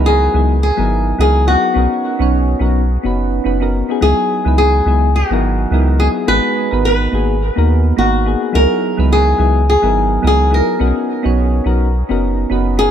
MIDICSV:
0, 0, Header, 1, 4, 480
1, 0, Start_track
1, 0, Tempo, 566038
1, 1487, Time_signature, 4, 2, 24, 8
1, 10947, End_track
2, 0, Start_track
2, 0, Title_t, "Nylon-string guitar"
2, 0, Program_c, 0, 24
2, 51, Note_on_c, 0, 68, 95
2, 525, Note_off_c, 0, 68, 0
2, 536, Note_on_c, 0, 68, 91
2, 1012, Note_off_c, 0, 68, 0
2, 1022, Note_on_c, 0, 68, 86
2, 1248, Note_off_c, 0, 68, 0
2, 1252, Note_on_c, 0, 66, 75
2, 2175, Note_off_c, 0, 66, 0
2, 3411, Note_on_c, 0, 68, 82
2, 3874, Note_off_c, 0, 68, 0
2, 3884, Note_on_c, 0, 68, 84
2, 4369, Note_off_c, 0, 68, 0
2, 4373, Note_on_c, 0, 66, 76
2, 5056, Note_off_c, 0, 66, 0
2, 5085, Note_on_c, 0, 68, 83
2, 5150, Note_off_c, 0, 68, 0
2, 5326, Note_on_c, 0, 71, 108
2, 5801, Note_off_c, 0, 71, 0
2, 5811, Note_on_c, 0, 71, 86
2, 6495, Note_off_c, 0, 71, 0
2, 6771, Note_on_c, 0, 66, 84
2, 7252, Note_on_c, 0, 70, 108
2, 7263, Note_off_c, 0, 66, 0
2, 7696, Note_off_c, 0, 70, 0
2, 7738, Note_on_c, 0, 68, 90
2, 8179, Note_off_c, 0, 68, 0
2, 8222, Note_on_c, 0, 68, 90
2, 8701, Note_off_c, 0, 68, 0
2, 8711, Note_on_c, 0, 68, 88
2, 8935, Note_off_c, 0, 68, 0
2, 8939, Note_on_c, 0, 70, 88
2, 10579, Note_off_c, 0, 70, 0
2, 10844, Note_on_c, 0, 68, 93
2, 10947, Note_off_c, 0, 68, 0
2, 10947, End_track
3, 0, Start_track
3, 0, Title_t, "Synth keys"
3, 0, Program_c, 1, 88
3, 0, Note_on_c, 1, 54, 86
3, 0, Note_on_c, 1, 59, 76
3, 0, Note_on_c, 1, 63, 83
3, 0, Note_on_c, 1, 64, 77
3, 0, Note_on_c, 1, 71, 92
3, 261, Note_off_c, 1, 54, 0
3, 263, Note_off_c, 1, 59, 0
3, 265, Note_off_c, 1, 63, 0
3, 269, Note_off_c, 1, 64, 0
3, 272, Note_off_c, 1, 71, 0
3, 285, Note_on_c, 1, 54, 76
3, 289, Note_on_c, 1, 59, 67
3, 294, Note_on_c, 1, 63, 67
3, 298, Note_on_c, 1, 64, 72
3, 307, Note_on_c, 1, 68, 85
3, 472, Note_off_c, 1, 54, 0
3, 474, Note_off_c, 1, 59, 0
3, 476, Note_off_c, 1, 63, 0
3, 478, Note_off_c, 1, 64, 0
3, 483, Note_off_c, 1, 68, 0
3, 652, Note_on_c, 1, 54, 79
3, 656, Note_on_c, 1, 59, 73
3, 663, Note_on_c, 1, 63, 71
3, 667, Note_on_c, 1, 64, 72
3, 674, Note_on_c, 1, 70, 87
3, 976, Note_off_c, 1, 54, 0
3, 978, Note_off_c, 1, 59, 0
3, 982, Note_off_c, 1, 63, 0
3, 984, Note_off_c, 1, 64, 0
3, 987, Note_off_c, 1, 70, 0
3, 1004, Note_on_c, 1, 54, 82
3, 1005, Note_on_c, 1, 59, 74
3, 1011, Note_on_c, 1, 63, 78
3, 1018, Note_on_c, 1, 64, 75
3, 1022, Note_on_c, 1, 70, 88
3, 1220, Note_off_c, 1, 54, 0
3, 1221, Note_off_c, 1, 59, 0
3, 1224, Note_off_c, 1, 63, 0
3, 1227, Note_off_c, 1, 64, 0
3, 1229, Note_off_c, 1, 70, 0
3, 1244, Note_on_c, 1, 54, 69
3, 1251, Note_on_c, 1, 59, 68
3, 1255, Note_on_c, 1, 63, 68
3, 1259, Note_on_c, 1, 64, 65
3, 1267, Note_on_c, 1, 68, 76
3, 1460, Note_off_c, 1, 54, 0
3, 1464, Note_off_c, 1, 59, 0
3, 1466, Note_off_c, 1, 63, 0
3, 1468, Note_off_c, 1, 64, 0
3, 1472, Note_off_c, 1, 68, 0
3, 1473, Note_on_c, 1, 59, 82
3, 1483, Note_on_c, 1, 61, 74
3, 1485, Note_on_c, 1, 63, 78
3, 1491, Note_on_c, 1, 66, 72
3, 1499, Note_on_c, 1, 70, 92
3, 1823, Note_off_c, 1, 59, 0
3, 1828, Note_off_c, 1, 61, 0
3, 1829, Note_off_c, 1, 63, 0
3, 1832, Note_off_c, 1, 66, 0
3, 1836, Note_off_c, 1, 70, 0
3, 1856, Note_on_c, 1, 59, 88
3, 1862, Note_on_c, 1, 61, 80
3, 1868, Note_on_c, 1, 63, 75
3, 1872, Note_on_c, 1, 66, 76
3, 1881, Note_on_c, 1, 73, 96
3, 2178, Note_off_c, 1, 59, 0
3, 2181, Note_off_c, 1, 61, 0
3, 2184, Note_off_c, 1, 63, 0
3, 2186, Note_off_c, 1, 66, 0
3, 2191, Note_off_c, 1, 73, 0
3, 2199, Note_on_c, 1, 59, 74
3, 2202, Note_on_c, 1, 61, 72
3, 2206, Note_on_c, 1, 63, 71
3, 2212, Note_on_c, 1, 66, 68
3, 2218, Note_on_c, 1, 70, 76
3, 2388, Note_off_c, 1, 59, 0
3, 2390, Note_off_c, 1, 61, 0
3, 2392, Note_off_c, 1, 63, 0
3, 2395, Note_off_c, 1, 66, 0
3, 2398, Note_off_c, 1, 70, 0
3, 2573, Note_on_c, 1, 59, 76
3, 2575, Note_on_c, 1, 61, 65
3, 2581, Note_on_c, 1, 63, 69
3, 2589, Note_on_c, 1, 66, 69
3, 2597, Note_on_c, 1, 71, 85
3, 2897, Note_off_c, 1, 59, 0
3, 2898, Note_off_c, 1, 61, 0
3, 2901, Note_off_c, 1, 63, 0
3, 2905, Note_off_c, 1, 66, 0
3, 2909, Note_off_c, 1, 71, 0
3, 2917, Note_on_c, 1, 59, 76
3, 2921, Note_on_c, 1, 61, 63
3, 2927, Note_on_c, 1, 63, 69
3, 2932, Note_on_c, 1, 66, 65
3, 2938, Note_on_c, 1, 71, 79
3, 3025, Note_off_c, 1, 59, 0
3, 3027, Note_off_c, 1, 61, 0
3, 3030, Note_off_c, 1, 63, 0
3, 3033, Note_off_c, 1, 66, 0
3, 3036, Note_off_c, 1, 71, 0
3, 3052, Note_on_c, 1, 59, 71
3, 3057, Note_on_c, 1, 61, 69
3, 3062, Note_on_c, 1, 63, 68
3, 3066, Note_on_c, 1, 66, 72
3, 3074, Note_on_c, 1, 70, 84
3, 3265, Note_off_c, 1, 59, 0
3, 3267, Note_off_c, 1, 61, 0
3, 3270, Note_off_c, 1, 63, 0
3, 3272, Note_off_c, 1, 66, 0
3, 3275, Note_off_c, 1, 70, 0
3, 3297, Note_on_c, 1, 59, 71
3, 3304, Note_on_c, 1, 61, 70
3, 3306, Note_on_c, 1, 63, 68
3, 3312, Note_on_c, 1, 66, 73
3, 3318, Note_on_c, 1, 68, 85
3, 3379, Note_off_c, 1, 59, 0
3, 3382, Note_off_c, 1, 61, 0
3, 3383, Note_off_c, 1, 63, 0
3, 3386, Note_off_c, 1, 66, 0
3, 3389, Note_off_c, 1, 68, 0
3, 3399, Note_on_c, 1, 54, 85
3, 3401, Note_on_c, 1, 59, 76
3, 3410, Note_on_c, 1, 63, 77
3, 3413, Note_on_c, 1, 64, 73
3, 3423, Note_on_c, 1, 68, 87
3, 3746, Note_off_c, 1, 54, 0
3, 3747, Note_off_c, 1, 59, 0
3, 3751, Note_off_c, 1, 63, 0
3, 3753, Note_off_c, 1, 64, 0
3, 3758, Note_off_c, 1, 68, 0
3, 3772, Note_on_c, 1, 54, 78
3, 3777, Note_on_c, 1, 59, 75
3, 3780, Note_on_c, 1, 63, 80
3, 3789, Note_on_c, 1, 64, 74
3, 3796, Note_on_c, 1, 71, 90
3, 4096, Note_off_c, 1, 54, 0
3, 4099, Note_off_c, 1, 59, 0
3, 4100, Note_off_c, 1, 63, 0
3, 4105, Note_off_c, 1, 64, 0
3, 4108, Note_off_c, 1, 71, 0
3, 4117, Note_on_c, 1, 54, 74
3, 4126, Note_on_c, 1, 59, 69
3, 4132, Note_on_c, 1, 63, 67
3, 4135, Note_on_c, 1, 64, 68
3, 4140, Note_on_c, 1, 68, 80
3, 4308, Note_off_c, 1, 54, 0
3, 4312, Note_off_c, 1, 59, 0
3, 4315, Note_off_c, 1, 63, 0
3, 4317, Note_off_c, 1, 64, 0
3, 4319, Note_off_c, 1, 68, 0
3, 4501, Note_on_c, 1, 54, 75
3, 4503, Note_on_c, 1, 59, 72
3, 4510, Note_on_c, 1, 63, 68
3, 4515, Note_on_c, 1, 64, 73
3, 4523, Note_on_c, 1, 70, 83
3, 4821, Note_off_c, 1, 54, 0
3, 4822, Note_off_c, 1, 59, 0
3, 4825, Note_off_c, 1, 63, 0
3, 4828, Note_off_c, 1, 64, 0
3, 4832, Note_off_c, 1, 70, 0
3, 4841, Note_on_c, 1, 54, 84
3, 4849, Note_on_c, 1, 59, 77
3, 4852, Note_on_c, 1, 63, 78
3, 4860, Note_on_c, 1, 64, 77
3, 4867, Note_on_c, 1, 70, 92
3, 5059, Note_off_c, 1, 54, 0
3, 5063, Note_off_c, 1, 59, 0
3, 5064, Note_off_c, 1, 63, 0
3, 5068, Note_off_c, 1, 64, 0
3, 5072, Note_off_c, 1, 70, 0
3, 5080, Note_on_c, 1, 54, 75
3, 5085, Note_on_c, 1, 59, 64
3, 5088, Note_on_c, 1, 63, 69
3, 5097, Note_on_c, 1, 64, 65
3, 5100, Note_on_c, 1, 68, 80
3, 5298, Note_off_c, 1, 54, 0
3, 5301, Note_off_c, 1, 59, 0
3, 5302, Note_off_c, 1, 63, 0
3, 5307, Note_off_c, 1, 64, 0
3, 5308, Note_off_c, 1, 68, 0
3, 5312, Note_on_c, 1, 56, 83
3, 5320, Note_on_c, 1, 59, 77
3, 5321, Note_on_c, 1, 63, 76
3, 5332, Note_on_c, 1, 66, 80
3, 5336, Note_on_c, 1, 68, 92
3, 5663, Note_off_c, 1, 56, 0
3, 5666, Note_off_c, 1, 59, 0
3, 5667, Note_off_c, 1, 63, 0
3, 5673, Note_off_c, 1, 66, 0
3, 5674, Note_off_c, 1, 68, 0
3, 5691, Note_on_c, 1, 70, 90
3, 5700, Note_on_c, 1, 59, 83
3, 5704, Note_on_c, 1, 63, 80
3, 5709, Note_on_c, 1, 66, 76
3, 5713, Note_on_c, 1, 71, 96
3, 6016, Note_off_c, 1, 70, 0
3, 6020, Note_off_c, 1, 59, 0
3, 6022, Note_off_c, 1, 63, 0
3, 6025, Note_off_c, 1, 66, 0
3, 6027, Note_off_c, 1, 71, 0
3, 6035, Note_on_c, 1, 58, 72
3, 6042, Note_on_c, 1, 59, 67
3, 6047, Note_on_c, 1, 63, 67
3, 6054, Note_on_c, 1, 66, 64
3, 6060, Note_on_c, 1, 68, 87
3, 6227, Note_off_c, 1, 58, 0
3, 6230, Note_off_c, 1, 59, 0
3, 6233, Note_off_c, 1, 63, 0
3, 6236, Note_off_c, 1, 66, 0
3, 6239, Note_off_c, 1, 68, 0
3, 6409, Note_on_c, 1, 58, 75
3, 6413, Note_on_c, 1, 59, 74
3, 6421, Note_on_c, 1, 63, 71
3, 6426, Note_on_c, 1, 66, 73
3, 6432, Note_on_c, 1, 70, 91
3, 6735, Note_off_c, 1, 58, 0
3, 6737, Note_off_c, 1, 59, 0
3, 6741, Note_off_c, 1, 63, 0
3, 6743, Note_off_c, 1, 66, 0
3, 6746, Note_off_c, 1, 70, 0
3, 6756, Note_on_c, 1, 58, 89
3, 6763, Note_on_c, 1, 59, 80
3, 6767, Note_on_c, 1, 63, 76
3, 6774, Note_on_c, 1, 66, 75
3, 6780, Note_on_c, 1, 70, 90
3, 6976, Note_off_c, 1, 58, 0
3, 6980, Note_off_c, 1, 59, 0
3, 6982, Note_off_c, 1, 63, 0
3, 6985, Note_off_c, 1, 66, 0
3, 6988, Note_off_c, 1, 70, 0
3, 6994, Note_on_c, 1, 58, 76
3, 7002, Note_on_c, 1, 59, 66
3, 7005, Note_on_c, 1, 63, 67
3, 7008, Note_on_c, 1, 66, 68
3, 7018, Note_on_c, 1, 68, 81
3, 7215, Note_off_c, 1, 58, 0
3, 7219, Note_off_c, 1, 59, 0
3, 7221, Note_off_c, 1, 63, 0
3, 7222, Note_off_c, 1, 66, 0
3, 7227, Note_off_c, 1, 68, 0
3, 7230, Note_on_c, 1, 54, 82
3, 7233, Note_on_c, 1, 59, 75
3, 7241, Note_on_c, 1, 63, 79
3, 7245, Note_on_c, 1, 64, 77
3, 7252, Note_on_c, 1, 68, 93
3, 7581, Note_off_c, 1, 54, 0
3, 7583, Note_off_c, 1, 59, 0
3, 7587, Note_off_c, 1, 63, 0
3, 7589, Note_off_c, 1, 64, 0
3, 7592, Note_off_c, 1, 68, 0
3, 7609, Note_on_c, 1, 54, 87
3, 7617, Note_on_c, 1, 59, 74
3, 7619, Note_on_c, 1, 63, 79
3, 7627, Note_on_c, 1, 64, 78
3, 7630, Note_on_c, 1, 71, 98
3, 7934, Note_off_c, 1, 54, 0
3, 7939, Note_off_c, 1, 59, 0
3, 7940, Note_off_c, 1, 63, 0
3, 7944, Note_off_c, 1, 64, 0
3, 7945, Note_off_c, 1, 71, 0
3, 7955, Note_on_c, 1, 54, 77
3, 7958, Note_on_c, 1, 59, 72
3, 7965, Note_on_c, 1, 63, 69
3, 7967, Note_on_c, 1, 64, 71
3, 7975, Note_on_c, 1, 68, 84
3, 8146, Note_off_c, 1, 54, 0
3, 8148, Note_off_c, 1, 59, 0
3, 8152, Note_off_c, 1, 63, 0
3, 8153, Note_off_c, 1, 64, 0
3, 8157, Note_off_c, 1, 68, 0
3, 8327, Note_on_c, 1, 54, 74
3, 8334, Note_on_c, 1, 59, 77
3, 8334, Note_on_c, 1, 63, 72
3, 8342, Note_on_c, 1, 64, 71
3, 8348, Note_on_c, 1, 70, 86
3, 8654, Note_off_c, 1, 54, 0
3, 8657, Note_off_c, 1, 59, 0
3, 8657, Note_off_c, 1, 63, 0
3, 8661, Note_off_c, 1, 64, 0
3, 8664, Note_off_c, 1, 70, 0
3, 8667, Note_on_c, 1, 54, 88
3, 8673, Note_on_c, 1, 59, 82
3, 8676, Note_on_c, 1, 63, 76
3, 8683, Note_on_c, 1, 64, 76
3, 8687, Note_on_c, 1, 70, 97
3, 8892, Note_off_c, 1, 54, 0
3, 8895, Note_off_c, 1, 59, 0
3, 8896, Note_off_c, 1, 63, 0
3, 8900, Note_off_c, 1, 64, 0
3, 8902, Note_off_c, 1, 70, 0
3, 8908, Note_on_c, 1, 54, 74
3, 8916, Note_on_c, 1, 59, 67
3, 8923, Note_on_c, 1, 63, 63
3, 8927, Note_on_c, 1, 64, 70
3, 8930, Note_on_c, 1, 68, 82
3, 9132, Note_off_c, 1, 54, 0
3, 9136, Note_off_c, 1, 59, 0
3, 9140, Note_off_c, 1, 63, 0
3, 9142, Note_off_c, 1, 64, 0
3, 9143, Note_off_c, 1, 68, 0
3, 9151, Note_on_c, 1, 59, 85
3, 9156, Note_on_c, 1, 61, 76
3, 9159, Note_on_c, 1, 63, 77
3, 9166, Note_on_c, 1, 66, 79
3, 9168, Note_on_c, 1, 70, 91
3, 9502, Note_off_c, 1, 59, 0
3, 9505, Note_off_c, 1, 61, 0
3, 9506, Note_off_c, 1, 63, 0
3, 9509, Note_off_c, 1, 66, 0
3, 9511, Note_off_c, 1, 70, 0
3, 9522, Note_on_c, 1, 59, 90
3, 9528, Note_on_c, 1, 61, 79
3, 9533, Note_on_c, 1, 63, 84
3, 9539, Note_on_c, 1, 66, 77
3, 9546, Note_on_c, 1, 73, 95
3, 9851, Note_off_c, 1, 59, 0
3, 9854, Note_off_c, 1, 61, 0
3, 9857, Note_off_c, 1, 63, 0
3, 9860, Note_off_c, 1, 66, 0
3, 9863, Note_off_c, 1, 73, 0
3, 9872, Note_on_c, 1, 59, 74
3, 9875, Note_on_c, 1, 61, 69
3, 9885, Note_on_c, 1, 63, 72
3, 9891, Note_on_c, 1, 66, 71
3, 9894, Note_on_c, 1, 70, 84
3, 10065, Note_off_c, 1, 59, 0
3, 10067, Note_off_c, 1, 61, 0
3, 10072, Note_off_c, 1, 63, 0
3, 10075, Note_off_c, 1, 66, 0
3, 10076, Note_off_c, 1, 70, 0
3, 10252, Note_on_c, 1, 59, 80
3, 10255, Note_on_c, 1, 61, 76
3, 10263, Note_on_c, 1, 63, 72
3, 10267, Note_on_c, 1, 66, 69
3, 10272, Note_on_c, 1, 70, 86
3, 10576, Note_off_c, 1, 59, 0
3, 10578, Note_off_c, 1, 61, 0
3, 10582, Note_off_c, 1, 63, 0
3, 10584, Note_off_c, 1, 66, 0
3, 10586, Note_off_c, 1, 70, 0
3, 10597, Note_on_c, 1, 59, 81
3, 10597, Note_on_c, 1, 61, 75
3, 10605, Note_on_c, 1, 63, 77
3, 10612, Note_on_c, 1, 66, 81
3, 10617, Note_on_c, 1, 71, 93
3, 10817, Note_off_c, 1, 59, 0
3, 10817, Note_off_c, 1, 61, 0
3, 10821, Note_off_c, 1, 63, 0
3, 10824, Note_off_c, 1, 66, 0
3, 10827, Note_off_c, 1, 71, 0
3, 10831, Note_on_c, 1, 59, 70
3, 10837, Note_on_c, 1, 61, 63
3, 10841, Note_on_c, 1, 63, 67
3, 10847, Note_on_c, 1, 66, 63
3, 10850, Note_on_c, 1, 70, 77
3, 10947, Note_off_c, 1, 59, 0
3, 10947, Note_off_c, 1, 61, 0
3, 10947, Note_off_c, 1, 63, 0
3, 10947, Note_off_c, 1, 66, 0
3, 10947, Note_off_c, 1, 70, 0
3, 10947, End_track
4, 0, Start_track
4, 0, Title_t, "Analog synth bass"
4, 0, Program_c, 2, 38
4, 0, Note_on_c, 2, 37, 78
4, 244, Note_off_c, 2, 37, 0
4, 291, Note_on_c, 2, 37, 77
4, 606, Note_off_c, 2, 37, 0
4, 667, Note_on_c, 2, 32, 82
4, 964, Note_off_c, 2, 32, 0
4, 1010, Note_on_c, 2, 37, 87
4, 1326, Note_off_c, 2, 37, 0
4, 1490, Note_on_c, 2, 35, 87
4, 1588, Note_off_c, 2, 35, 0
4, 1862, Note_on_c, 2, 35, 77
4, 2162, Note_off_c, 2, 35, 0
4, 2207, Note_on_c, 2, 35, 80
4, 2524, Note_off_c, 2, 35, 0
4, 2583, Note_on_c, 2, 30, 74
4, 2882, Note_off_c, 2, 30, 0
4, 2929, Note_on_c, 2, 30, 99
4, 3246, Note_off_c, 2, 30, 0
4, 3409, Note_on_c, 2, 37, 89
4, 3507, Note_off_c, 2, 37, 0
4, 3780, Note_on_c, 2, 37, 78
4, 4080, Note_off_c, 2, 37, 0
4, 4121, Note_on_c, 2, 37, 76
4, 4441, Note_off_c, 2, 37, 0
4, 4499, Note_on_c, 2, 32, 77
4, 4800, Note_off_c, 2, 32, 0
4, 4844, Note_on_c, 2, 37, 86
4, 5163, Note_off_c, 2, 37, 0
4, 5328, Note_on_c, 2, 32, 95
4, 5427, Note_off_c, 2, 32, 0
4, 5702, Note_on_c, 2, 32, 78
4, 6002, Note_off_c, 2, 32, 0
4, 6045, Note_on_c, 2, 32, 78
4, 6364, Note_off_c, 2, 32, 0
4, 6424, Note_on_c, 2, 39, 77
4, 6723, Note_off_c, 2, 39, 0
4, 6768, Note_on_c, 2, 32, 83
4, 7085, Note_off_c, 2, 32, 0
4, 7249, Note_on_c, 2, 37, 91
4, 7347, Note_off_c, 2, 37, 0
4, 7621, Note_on_c, 2, 37, 81
4, 7921, Note_off_c, 2, 37, 0
4, 7965, Note_on_c, 2, 37, 80
4, 8283, Note_off_c, 2, 37, 0
4, 8338, Note_on_c, 2, 32, 74
4, 8640, Note_off_c, 2, 32, 0
4, 8682, Note_on_c, 2, 37, 86
4, 9002, Note_off_c, 2, 37, 0
4, 9161, Note_on_c, 2, 35, 88
4, 9263, Note_off_c, 2, 35, 0
4, 9542, Note_on_c, 2, 35, 77
4, 9842, Note_off_c, 2, 35, 0
4, 9884, Note_on_c, 2, 35, 79
4, 10203, Note_off_c, 2, 35, 0
4, 10262, Note_on_c, 2, 30, 85
4, 10561, Note_off_c, 2, 30, 0
4, 10605, Note_on_c, 2, 30, 109
4, 10923, Note_off_c, 2, 30, 0
4, 10947, End_track
0, 0, End_of_file